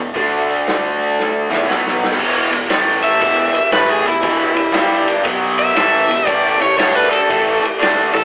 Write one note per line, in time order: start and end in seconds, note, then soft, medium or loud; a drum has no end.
0.00 0.14 E1 medium
0.00 0.12 E2 medium
0.00 0.12 B2 medium
0.14 1.47 D2 medium
0.14 1.49 D3 medium
0.14 1.49 A3 medium
0.14 1.50 D4 loud
0.14 kick loud
0.14 open hi-hat medium
0.50 open hi-hat soft
0.67 snare loud
0.67 open hi-hat medium
1.01 open hi-hat medium
1.19 snare medium
1.50 1.67 E2 medium
1.50 1.66 E3 medium
1.50 1.67 B3 medium
1.50 1.68 E4 loud
1.50 snare medium
1.67 2.15 B1 medium
1.67 2.18 B2 medium
1.67 2.18 F#3 medium
1.67 2.19 B3 loud
1.67 snare medium
1.87 snare medium
2.04 snare medium
2.11 snare medium
2.18 2.50 E1 medium
2.18 2.50 E2 medium
2.18 2.51 B2 medium
2.18 2.52 E3 medium
2.18 kick loud
2.18 crash loud
2.52 2.69 E1 medium
2.52 2.66 E2 medium
2.52 2.67 B2 medium
2.52 ride medium
2.69 3.18 A1 medium
2.69 3.20 A2 medium
2.69 3.20 E3 medium
2.69 3.21 A3 loud
2.69 snare loud
2.69 ride medium
3.04 3.70 E5 loud
3.04 ride medium
3.20 3.53 E1 medium
3.20 3.53 E2 medium
3.20 3.53 B2 medium
3.20 3.54 E3 medium
3.20 kick loud
3.20 ride medium
3.54 muted overdriven electric guitar stroke medium
3.54 muted fingered electric bass stroke soft
3.54 ride medium
3.72 4.03 A1 medium
3.72 4.04 A2 medium
3.72 4.05 E3 medium
3.72 4.05 A3 medium
3.72 3.89 B4 medium
3.72 snare loud
3.72 ride medium
3.89 4.06 G#4 medium
4.04 4.22 E1 medium
4.04 4.19 E2 medium
4.04 4.19 B2 medium
4.04 5.06 E4 loud
4.04 ride medium
4.22 4.55 E1 medium
4.22 4.54 E2 medium
4.22 4.54 B2 medium
4.22 4.56 E3 medium
4.22 kick loud
4.22 ride medium
4.55 4.74 E1 medium
4.55 4.72 E2 medium
4.55 4.72 B2 medium
4.55 ride medium
4.72 5.22 G1 medium
4.72 5.24 G2 medium
4.72 5.23 D3 loud
4.72 5.24 G3 loud
4.72 snare loud
4.72 ride medium
5.08 ride medium
5.24 5.73 B1 medium
5.24 5.74 B2 medium
5.24 5.75 F#3 loud
5.24 5.75 B3 medium
5.24 kick loud
5.24 ride medium
5.59 6.27 E5 loud
5.59 ride medium
5.75 6.08 A1 loud
5.75 6.07 A2 medium
5.75 6.09 E3 medium
5.75 6.09 A3 loud
5.75 snare loud
5.75 ride medium
6.07 6.27 E1 medium
6.07 6.23 E2 medium
6.07 6.23 B2 medium
6.07 ride medium
6.25 6.59 A1 medium
6.25 6.59 A2 medium
6.25 6.59 E3 medium
6.25 6.60 A3 loud
6.25 6.59 D5 loud
6.25 kick loud
6.25 ride medium
6.60 6.77 A1 medium
6.60 6.75 A2 medium
6.60 6.75 E3 medium
6.60 6.77 C#5 medium
6.60 ride medium
6.78 7.26 D2 medium
6.78 7.29 D3 medium
6.78 7.29 A3 medium
6.78 7.30 D4 medium
6.78 6.95 C#5 medium
6.78 snare loud
6.78 ride medium
6.95 7.11 B4 medium
7.11 7.62 A4 medium
7.11 ride medium
7.29 7.62 A1 loud
7.29 7.62 A2 medium
7.29 7.63 E3 medium
7.29 7.63 A3 medium
7.29 kick loud
7.29 ride medium
7.63 muted overdriven electric guitar stroke medium
7.63 muted fingered electric bass stroke soft
7.63 ride medium
7.79 8.13 D2 medium
7.79 8.13 D3 medium
7.79 8.13 A3 medium
7.79 8.13 D4 medium
7.79 ride medium
7.83 snare loud
8.13 8.24 A1 medium
8.13 8.24 A2 medium
8.13 8.24 E3 medium
8.13 8.24 A4 loud
8.13 ride medium